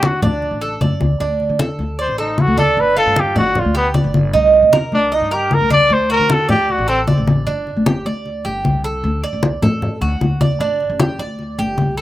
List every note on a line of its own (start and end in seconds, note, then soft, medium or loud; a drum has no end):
0.00 0.21 D3 medium
0.00 0.21 F#4 medium
0.00 high conga medium
0.05 0.23 F#4 medium
0.22 0.50 D2 medium
0.22 0.78 D4 medium
0.22 0.61 D5 medium
0.22 low conga medium
0.42 high conga soft
0.51 0.79 A1 medium
0.61 0.81 A4 medium
0.61 high conga soft
0.81 0.99 F#2 medium
0.81 1.19 D5 medium
0.81 high conga medium
1.00 1.18 D2 medium
1.00 high conga medium
1.20 1.48 D2 medium
1.20 1.58 D4 medium
1.20 high conga soft
1.40 high conga soft
1.49 1.78 D3 medium
1.59 1.98 A4 medium
1.59 high conga loud
1.79 2.07 D2 medium
1.79 high conga soft
1.99 2.18 C5 medium
1.99 2.18 D5 medium
1.99 high conga soft
2.08 2.46 A1 medium
2.18 2.42 D#4 medium
2.18 2.56 A4 medium
2.18 high conga soft
2.38 2.58 F#4 medium
2.38 high conga medium
2.47 2.75 D2 medium
2.57 2.96 D4 medium
2.57 2.81 A4 medium
2.57 high conga medium
2.77 3.05 G1 loud
2.77 2.97 B4 medium
2.77 high conga soft
2.97 3.35 F4 medium
2.97 3.21 A4 loud
2.97 high conga soft
3.06 3.34 G2 medium
3.16 3.37 G4 medium
3.16 high conga medium
3.36 3.64 G1 medium
3.36 3.61 F#4 medium
3.36 3.74 D5 medium
3.36 low conga medium
3.55 3.76 F4 medium
3.55 high conga soft
3.55 low conga medium
3.65 4.02 D2 medium
3.75 3.88 B3 medium
3.75 3.94 G4 medium
3.75 high conga soft
3.94 4.32 D5 medium
3.94 high conga medium
4.04 4.32 G1 medium
4.14 high conga medium
4.33 4.62 C2 loud
4.33 4.72 D#4 medium
4.33 high conga soft
4.53 high conga soft
4.63 4.91 C3 medium
4.73 5.11 A#4 medium
4.73 high conga medium
4.92 5.20 C2 medium
4.92 5.16 D4 loud
4.92 high conga soft
5.12 5.34 D#4 medium
5.12 5.31 D#5 medium
5.12 high conga soft
5.21 5.59 G2 medium
5.31 5.55 G4 medium
5.31 5.70 A#4 medium
5.31 high conga soft
5.51 5.71 A#4 loud
5.51 high conga medium
5.61 5.89 C2 medium
5.70 6.09 D4 medium
5.70 5.95 D5 loud
5.70 high conga medium
5.90 6.18 D2 loud
5.90 6.11 C5 medium
5.90 high conga soft
6.10 6.48 F#4 medium
6.10 6.34 A#4 loud
6.10 high conga soft
6.19 6.48 D3 medium
6.30 6.49 A4 medium
6.30 high conga loud
6.49 6.77 D2 medium
6.49 6.73 G4 medium
6.49 6.87 D5 medium
6.49 low conga medium
6.69 6.88 F#4 medium
6.69 high conga soft
6.79 7.16 A1 medium
6.88 7.01 C4 loud
6.88 7.07 A4 medium
6.88 high conga soft
7.07 7.46 D5 medium
7.07 high conga medium
7.18 7.46 A1 medium
7.28 high conga medium
7.47 7.66 G1 medium
7.47 7.85 D4 medium
7.47 high conga soft
7.67 high conga soft
7.77 8.04 F#1 medium
7.86 8.05 G4 medium
7.86 high conga medium
8.06 8.43 D2 medium
8.06 8.44 D5 medium
8.06 high conga soft
8.26 high conga soft
8.45 8.64 G1 medium
8.45 8.83 G4 medium
8.45 high conga soft
8.65 9.02 C2 medium
8.65 high conga medium
8.84 9.22 A4 medium
9.04 9.22 D2 loud
9.04 high conga soft
9.23 9.61 D5 medium
9.23 high conga soft
9.33 9.61 C2 medium
9.43 high conga medium
9.62 10.00 A1 medium
9.62 10.01 A4 medium
9.62 high conga soft
9.62 low conga medium
9.82 high conga soft
9.82 low conga medium
10.01 10.20 D2 medium
10.01 10.40 F#4 medium
10.01 high conga soft
10.21 10.58 D2 medium
10.21 high conga medium
10.41 10.60 D5 medium
10.41 high conga medium
10.60 10.79 G1 loud
10.60 10.99 D4 medium
10.60 high conga soft
10.80 high conga soft
10.90 11.18 F#1 medium
11.00 11.19 G4 medium
11.00 high conga loud
11.19 11.56 D2 medium
11.19 11.57 D5 medium
11.19 high conga soft
11.39 high conga soft
11.58 11.77 G1 medium
11.58 11.97 G4 medium
11.58 high conga soft
11.78 12.01 C2 medium
11.78 high conga medium
11.97 12.01 A4 medium